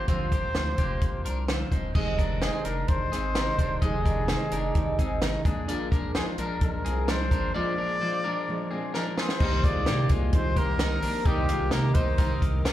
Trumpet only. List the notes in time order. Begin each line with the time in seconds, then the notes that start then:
0.09 C5
2.42 G#4
2.65 A#4
2.89 C5
3.82 G#4
6.16 G#4
6.38 A#4
6.62 A#4
7.09 C5
7.55 D5
8.94 A#4
9.18 C5
9.64 D5
10.35 C5
10.58 A#4
11.26 G4
11.72 A#4
11.95 C5
12.66 A#4